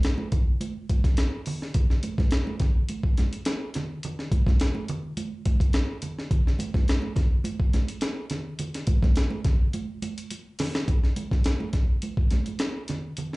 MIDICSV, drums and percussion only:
0, 0, Header, 1, 2, 480
1, 0, Start_track
1, 0, Tempo, 570885
1, 1471, Time_signature, 4, 2, 24, 8
1, 11238, End_track
2, 0, Start_track
2, 0, Title_t, "Drums"
2, 27, Note_on_c, 9, 42, 74
2, 39, Note_on_c, 9, 38, 93
2, 111, Note_off_c, 9, 42, 0
2, 123, Note_off_c, 9, 38, 0
2, 150, Note_on_c, 9, 63, 82
2, 234, Note_off_c, 9, 63, 0
2, 268, Note_on_c, 9, 42, 71
2, 271, Note_on_c, 9, 36, 102
2, 271, Note_on_c, 9, 62, 36
2, 271, Note_on_c, 9, 64, 75
2, 352, Note_off_c, 9, 42, 0
2, 355, Note_off_c, 9, 36, 0
2, 355, Note_off_c, 9, 62, 0
2, 355, Note_off_c, 9, 64, 0
2, 510, Note_on_c, 9, 62, 30
2, 510, Note_on_c, 9, 63, 76
2, 512, Note_on_c, 9, 42, 80
2, 594, Note_off_c, 9, 62, 0
2, 594, Note_off_c, 9, 63, 0
2, 596, Note_off_c, 9, 42, 0
2, 752, Note_on_c, 9, 42, 69
2, 753, Note_on_c, 9, 36, 90
2, 758, Note_on_c, 9, 63, 80
2, 836, Note_off_c, 9, 42, 0
2, 837, Note_off_c, 9, 36, 0
2, 842, Note_off_c, 9, 63, 0
2, 876, Note_on_c, 9, 36, 95
2, 879, Note_on_c, 9, 42, 59
2, 883, Note_on_c, 9, 38, 37
2, 960, Note_off_c, 9, 36, 0
2, 964, Note_off_c, 9, 42, 0
2, 967, Note_off_c, 9, 38, 0
2, 984, Note_on_c, 9, 42, 99
2, 992, Note_on_c, 9, 38, 86
2, 1068, Note_off_c, 9, 42, 0
2, 1076, Note_off_c, 9, 38, 0
2, 1226, Note_on_c, 9, 46, 68
2, 1235, Note_on_c, 9, 64, 72
2, 1310, Note_off_c, 9, 46, 0
2, 1320, Note_off_c, 9, 64, 0
2, 1364, Note_on_c, 9, 38, 37
2, 1448, Note_off_c, 9, 38, 0
2, 1466, Note_on_c, 9, 42, 90
2, 1469, Note_on_c, 9, 36, 113
2, 1475, Note_on_c, 9, 62, 33
2, 1475, Note_on_c, 9, 64, 73
2, 1550, Note_off_c, 9, 42, 0
2, 1553, Note_off_c, 9, 36, 0
2, 1560, Note_off_c, 9, 62, 0
2, 1560, Note_off_c, 9, 64, 0
2, 1600, Note_on_c, 9, 38, 36
2, 1684, Note_off_c, 9, 38, 0
2, 1705, Note_on_c, 9, 42, 77
2, 1711, Note_on_c, 9, 63, 74
2, 1789, Note_off_c, 9, 42, 0
2, 1795, Note_off_c, 9, 63, 0
2, 1834, Note_on_c, 9, 36, 107
2, 1839, Note_on_c, 9, 38, 40
2, 1848, Note_on_c, 9, 63, 87
2, 1918, Note_off_c, 9, 36, 0
2, 1923, Note_off_c, 9, 38, 0
2, 1933, Note_off_c, 9, 63, 0
2, 1940, Note_on_c, 9, 42, 70
2, 1950, Note_on_c, 9, 62, 34
2, 1952, Note_on_c, 9, 38, 109
2, 2024, Note_off_c, 9, 42, 0
2, 2034, Note_off_c, 9, 62, 0
2, 2036, Note_off_c, 9, 38, 0
2, 2077, Note_on_c, 9, 63, 75
2, 2161, Note_off_c, 9, 63, 0
2, 2182, Note_on_c, 9, 42, 66
2, 2186, Note_on_c, 9, 36, 112
2, 2191, Note_on_c, 9, 38, 40
2, 2197, Note_on_c, 9, 64, 80
2, 2266, Note_off_c, 9, 42, 0
2, 2270, Note_off_c, 9, 36, 0
2, 2275, Note_off_c, 9, 38, 0
2, 2281, Note_off_c, 9, 64, 0
2, 2426, Note_on_c, 9, 42, 78
2, 2433, Note_on_c, 9, 63, 75
2, 2510, Note_off_c, 9, 42, 0
2, 2517, Note_off_c, 9, 63, 0
2, 2551, Note_on_c, 9, 36, 96
2, 2635, Note_off_c, 9, 36, 0
2, 2669, Note_on_c, 9, 42, 68
2, 2673, Note_on_c, 9, 38, 44
2, 2684, Note_on_c, 9, 62, 41
2, 2684, Note_on_c, 9, 63, 75
2, 2753, Note_off_c, 9, 42, 0
2, 2758, Note_off_c, 9, 38, 0
2, 2768, Note_off_c, 9, 62, 0
2, 2768, Note_off_c, 9, 63, 0
2, 2797, Note_on_c, 9, 42, 60
2, 2881, Note_off_c, 9, 42, 0
2, 2903, Note_on_c, 9, 42, 91
2, 2911, Note_on_c, 9, 38, 110
2, 2924, Note_on_c, 9, 62, 36
2, 2987, Note_off_c, 9, 42, 0
2, 2995, Note_off_c, 9, 38, 0
2, 3008, Note_off_c, 9, 62, 0
2, 3145, Note_on_c, 9, 42, 76
2, 3155, Note_on_c, 9, 38, 34
2, 3163, Note_on_c, 9, 62, 33
2, 3163, Note_on_c, 9, 64, 78
2, 3229, Note_off_c, 9, 42, 0
2, 3240, Note_off_c, 9, 38, 0
2, 3247, Note_off_c, 9, 62, 0
2, 3247, Note_off_c, 9, 64, 0
2, 3390, Note_on_c, 9, 42, 90
2, 3403, Note_on_c, 9, 64, 77
2, 3474, Note_off_c, 9, 42, 0
2, 3487, Note_off_c, 9, 64, 0
2, 3523, Note_on_c, 9, 38, 36
2, 3607, Note_off_c, 9, 38, 0
2, 3628, Note_on_c, 9, 36, 104
2, 3630, Note_on_c, 9, 42, 83
2, 3630, Note_on_c, 9, 63, 74
2, 3713, Note_off_c, 9, 36, 0
2, 3714, Note_off_c, 9, 42, 0
2, 3714, Note_off_c, 9, 63, 0
2, 3755, Note_on_c, 9, 36, 103
2, 3765, Note_on_c, 9, 38, 39
2, 3768, Note_on_c, 9, 63, 91
2, 3839, Note_off_c, 9, 36, 0
2, 3849, Note_off_c, 9, 38, 0
2, 3852, Note_off_c, 9, 63, 0
2, 3865, Note_on_c, 9, 42, 74
2, 3872, Note_on_c, 9, 62, 30
2, 3877, Note_on_c, 9, 38, 107
2, 3949, Note_off_c, 9, 42, 0
2, 3956, Note_off_c, 9, 62, 0
2, 3961, Note_off_c, 9, 38, 0
2, 3991, Note_on_c, 9, 63, 81
2, 4075, Note_off_c, 9, 63, 0
2, 4107, Note_on_c, 9, 42, 68
2, 4115, Note_on_c, 9, 62, 32
2, 4115, Note_on_c, 9, 64, 86
2, 4191, Note_off_c, 9, 42, 0
2, 4199, Note_off_c, 9, 62, 0
2, 4199, Note_off_c, 9, 64, 0
2, 4347, Note_on_c, 9, 42, 85
2, 4348, Note_on_c, 9, 62, 33
2, 4348, Note_on_c, 9, 63, 75
2, 4431, Note_off_c, 9, 42, 0
2, 4432, Note_off_c, 9, 62, 0
2, 4432, Note_off_c, 9, 63, 0
2, 4586, Note_on_c, 9, 63, 79
2, 4587, Note_on_c, 9, 42, 67
2, 4588, Note_on_c, 9, 36, 92
2, 4670, Note_off_c, 9, 63, 0
2, 4671, Note_off_c, 9, 42, 0
2, 4672, Note_off_c, 9, 36, 0
2, 4710, Note_on_c, 9, 36, 91
2, 4716, Note_on_c, 9, 42, 63
2, 4794, Note_off_c, 9, 36, 0
2, 4800, Note_off_c, 9, 42, 0
2, 4819, Note_on_c, 9, 42, 82
2, 4827, Note_on_c, 9, 38, 101
2, 4830, Note_on_c, 9, 62, 33
2, 4903, Note_off_c, 9, 42, 0
2, 4911, Note_off_c, 9, 38, 0
2, 4914, Note_off_c, 9, 62, 0
2, 5060, Note_on_c, 9, 42, 80
2, 5067, Note_on_c, 9, 62, 31
2, 5067, Note_on_c, 9, 64, 71
2, 5144, Note_off_c, 9, 42, 0
2, 5151, Note_off_c, 9, 62, 0
2, 5151, Note_off_c, 9, 64, 0
2, 5201, Note_on_c, 9, 38, 37
2, 5285, Note_off_c, 9, 38, 0
2, 5303, Note_on_c, 9, 62, 34
2, 5303, Note_on_c, 9, 64, 70
2, 5304, Note_on_c, 9, 36, 112
2, 5305, Note_on_c, 9, 42, 82
2, 5388, Note_off_c, 9, 36, 0
2, 5388, Note_off_c, 9, 62, 0
2, 5388, Note_off_c, 9, 64, 0
2, 5389, Note_off_c, 9, 42, 0
2, 5442, Note_on_c, 9, 38, 34
2, 5526, Note_off_c, 9, 38, 0
2, 5540, Note_on_c, 9, 62, 38
2, 5540, Note_on_c, 9, 63, 77
2, 5548, Note_on_c, 9, 42, 89
2, 5624, Note_off_c, 9, 62, 0
2, 5624, Note_off_c, 9, 63, 0
2, 5632, Note_off_c, 9, 42, 0
2, 5669, Note_on_c, 9, 36, 106
2, 5674, Note_on_c, 9, 63, 83
2, 5679, Note_on_c, 9, 38, 37
2, 5754, Note_off_c, 9, 36, 0
2, 5758, Note_off_c, 9, 63, 0
2, 5763, Note_off_c, 9, 38, 0
2, 5784, Note_on_c, 9, 42, 71
2, 5796, Note_on_c, 9, 38, 104
2, 5868, Note_off_c, 9, 42, 0
2, 5880, Note_off_c, 9, 38, 0
2, 5902, Note_on_c, 9, 63, 73
2, 5987, Note_off_c, 9, 63, 0
2, 6018, Note_on_c, 9, 62, 35
2, 6018, Note_on_c, 9, 64, 77
2, 6023, Note_on_c, 9, 36, 97
2, 6024, Note_on_c, 9, 42, 63
2, 6033, Note_on_c, 9, 38, 42
2, 6102, Note_off_c, 9, 62, 0
2, 6102, Note_off_c, 9, 64, 0
2, 6107, Note_off_c, 9, 36, 0
2, 6108, Note_off_c, 9, 42, 0
2, 6117, Note_off_c, 9, 38, 0
2, 6257, Note_on_c, 9, 62, 34
2, 6257, Note_on_c, 9, 63, 77
2, 6263, Note_on_c, 9, 42, 86
2, 6341, Note_off_c, 9, 62, 0
2, 6341, Note_off_c, 9, 63, 0
2, 6348, Note_off_c, 9, 42, 0
2, 6387, Note_on_c, 9, 36, 89
2, 6471, Note_off_c, 9, 36, 0
2, 6503, Note_on_c, 9, 42, 68
2, 6505, Note_on_c, 9, 63, 82
2, 6507, Note_on_c, 9, 38, 41
2, 6587, Note_off_c, 9, 42, 0
2, 6589, Note_off_c, 9, 63, 0
2, 6591, Note_off_c, 9, 38, 0
2, 6629, Note_on_c, 9, 42, 67
2, 6713, Note_off_c, 9, 42, 0
2, 6735, Note_on_c, 9, 42, 90
2, 6743, Note_on_c, 9, 38, 97
2, 6819, Note_off_c, 9, 42, 0
2, 6827, Note_off_c, 9, 38, 0
2, 6976, Note_on_c, 9, 42, 79
2, 6984, Note_on_c, 9, 64, 76
2, 6986, Note_on_c, 9, 38, 35
2, 7060, Note_off_c, 9, 42, 0
2, 7068, Note_off_c, 9, 64, 0
2, 7070, Note_off_c, 9, 38, 0
2, 7221, Note_on_c, 9, 42, 87
2, 7227, Note_on_c, 9, 62, 34
2, 7227, Note_on_c, 9, 64, 69
2, 7305, Note_off_c, 9, 42, 0
2, 7311, Note_off_c, 9, 62, 0
2, 7311, Note_off_c, 9, 64, 0
2, 7352, Note_on_c, 9, 42, 66
2, 7357, Note_on_c, 9, 38, 34
2, 7436, Note_off_c, 9, 42, 0
2, 7441, Note_off_c, 9, 38, 0
2, 7456, Note_on_c, 9, 42, 83
2, 7461, Note_on_c, 9, 63, 70
2, 7462, Note_on_c, 9, 36, 115
2, 7540, Note_off_c, 9, 42, 0
2, 7545, Note_off_c, 9, 63, 0
2, 7546, Note_off_c, 9, 36, 0
2, 7589, Note_on_c, 9, 36, 109
2, 7592, Note_on_c, 9, 38, 35
2, 7599, Note_on_c, 9, 63, 88
2, 7673, Note_off_c, 9, 36, 0
2, 7677, Note_off_c, 9, 38, 0
2, 7683, Note_off_c, 9, 63, 0
2, 7698, Note_on_c, 9, 42, 81
2, 7700, Note_on_c, 9, 62, 32
2, 7710, Note_on_c, 9, 38, 91
2, 7782, Note_off_c, 9, 42, 0
2, 7784, Note_off_c, 9, 62, 0
2, 7794, Note_off_c, 9, 38, 0
2, 7823, Note_on_c, 9, 63, 76
2, 7907, Note_off_c, 9, 63, 0
2, 7941, Note_on_c, 9, 42, 72
2, 7943, Note_on_c, 9, 36, 108
2, 7949, Note_on_c, 9, 64, 75
2, 7950, Note_on_c, 9, 38, 41
2, 8025, Note_off_c, 9, 42, 0
2, 8027, Note_off_c, 9, 36, 0
2, 8034, Note_off_c, 9, 38, 0
2, 8034, Note_off_c, 9, 64, 0
2, 8184, Note_on_c, 9, 42, 75
2, 8188, Note_on_c, 9, 62, 33
2, 8188, Note_on_c, 9, 63, 77
2, 8268, Note_off_c, 9, 42, 0
2, 8272, Note_off_c, 9, 62, 0
2, 8272, Note_off_c, 9, 63, 0
2, 8427, Note_on_c, 9, 62, 39
2, 8427, Note_on_c, 9, 63, 80
2, 8429, Note_on_c, 9, 42, 73
2, 8511, Note_off_c, 9, 62, 0
2, 8511, Note_off_c, 9, 63, 0
2, 8513, Note_off_c, 9, 42, 0
2, 8557, Note_on_c, 9, 42, 67
2, 8641, Note_off_c, 9, 42, 0
2, 8665, Note_on_c, 9, 42, 89
2, 8672, Note_on_c, 9, 62, 37
2, 8749, Note_off_c, 9, 42, 0
2, 8756, Note_off_c, 9, 62, 0
2, 8902, Note_on_c, 9, 46, 80
2, 8911, Note_on_c, 9, 38, 87
2, 8912, Note_on_c, 9, 62, 37
2, 8912, Note_on_c, 9, 64, 79
2, 8986, Note_off_c, 9, 46, 0
2, 8995, Note_off_c, 9, 38, 0
2, 8996, Note_off_c, 9, 62, 0
2, 8996, Note_off_c, 9, 64, 0
2, 9039, Note_on_c, 9, 38, 99
2, 9123, Note_off_c, 9, 38, 0
2, 9147, Note_on_c, 9, 36, 109
2, 9148, Note_on_c, 9, 42, 84
2, 9150, Note_on_c, 9, 64, 65
2, 9231, Note_off_c, 9, 36, 0
2, 9232, Note_off_c, 9, 42, 0
2, 9234, Note_off_c, 9, 64, 0
2, 9279, Note_on_c, 9, 38, 32
2, 9363, Note_off_c, 9, 38, 0
2, 9386, Note_on_c, 9, 42, 83
2, 9386, Note_on_c, 9, 62, 33
2, 9386, Note_on_c, 9, 63, 69
2, 9470, Note_off_c, 9, 42, 0
2, 9470, Note_off_c, 9, 62, 0
2, 9470, Note_off_c, 9, 63, 0
2, 9513, Note_on_c, 9, 36, 100
2, 9518, Note_on_c, 9, 38, 37
2, 9525, Note_on_c, 9, 63, 77
2, 9597, Note_off_c, 9, 36, 0
2, 9602, Note_off_c, 9, 38, 0
2, 9609, Note_off_c, 9, 63, 0
2, 9621, Note_on_c, 9, 42, 75
2, 9624, Note_on_c, 9, 62, 28
2, 9633, Note_on_c, 9, 38, 106
2, 9705, Note_off_c, 9, 42, 0
2, 9708, Note_off_c, 9, 62, 0
2, 9717, Note_off_c, 9, 38, 0
2, 9755, Note_on_c, 9, 63, 77
2, 9839, Note_off_c, 9, 63, 0
2, 9862, Note_on_c, 9, 42, 63
2, 9866, Note_on_c, 9, 36, 93
2, 9871, Note_on_c, 9, 38, 41
2, 9872, Note_on_c, 9, 62, 36
2, 9946, Note_off_c, 9, 42, 0
2, 9950, Note_off_c, 9, 36, 0
2, 9955, Note_off_c, 9, 38, 0
2, 9956, Note_off_c, 9, 62, 0
2, 10106, Note_on_c, 9, 42, 71
2, 10114, Note_on_c, 9, 63, 64
2, 10190, Note_off_c, 9, 42, 0
2, 10198, Note_off_c, 9, 63, 0
2, 10234, Note_on_c, 9, 36, 101
2, 10318, Note_off_c, 9, 36, 0
2, 10346, Note_on_c, 9, 42, 69
2, 10351, Note_on_c, 9, 38, 39
2, 10362, Note_on_c, 9, 62, 36
2, 10362, Note_on_c, 9, 63, 84
2, 10430, Note_off_c, 9, 42, 0
2, 10435, Note_off_c, 9, 38, 0
2, 10446, Note_off_c, 9, 62, 0
2, 10446, Note_off_c, 9, 63, 0
2, 10475, Note_on_c, 9, 42, 55
2, 10487, Note_on_c, 9, 63, 54
2, 10559, Note_off_c, 9, 42, 0
2, 10571, Note_off_c, 9, 63, 0
2, 10585, Note_on_c, 9, 42, 88
2, 10592, Note_on_c, 9, 38, 102
2, 10603, Note_on_c, 9, 62, 34
2, 10669, Note_off_c, 9, 42, 0
2, 10676, Note_off_c, 9, 38, 0
2, 10687, Note_off_c, 9, 62, 0
2, 10829, Note_on_c, 9, 42, 77
2, 10839, Note_on_c, 9, 38, 34
2, 10844, Note_on_c, 9, 62, 32
2, 10844, Note_on_c, 9, 64, 81
2, 10913, Note_off_c, 9, 42, 0
2, 10923, Note_off_c, 9, 38, 0
2, 10928, Note_off_c, 9, 62, 0
2, 10928, Note_off_c, 9, 64, 0
2, 11071, Note_on_c, 9, 42, 85
2, 11083, Note_on_c, 9, 64, 74
2, 11155, Note_off_c, 9, 42, 0
2, 11168, Note_off_c, 9, 64, 0
2, 11211, Note_on_c, 9, 38, 33
2, 11238, Note_off_c, 9, 38, 0
2, 11238, End_track
0, 0, End_of_file